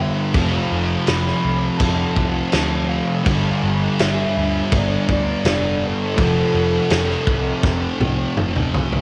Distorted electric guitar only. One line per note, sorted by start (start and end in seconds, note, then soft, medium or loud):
0.00 0.33 G2 medium
0.00 0.33 D3 medium
0.00 0.34 G3 medium
0.34 3.24 F2 medium
0.34 3.25 C3 medium
0.34 3.25 F3 medium
3.25 6.15 G2 medium
3.25 6.16 D3 loud
3.25 6.17 G3 medium
6.17 9.01 F2 medium
6.17 9.01 C3 medium
6.17 9.01 F3 loud